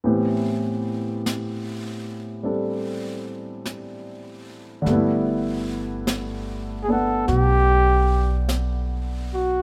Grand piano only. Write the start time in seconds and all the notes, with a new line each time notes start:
0.04 A2 E3 B3 C4 G4
2.43 G3 C4 D4 A4
4.82 D3 G3
4.87 A3 B3
4.93 E4
6.88 B3 D4
6.92 F#5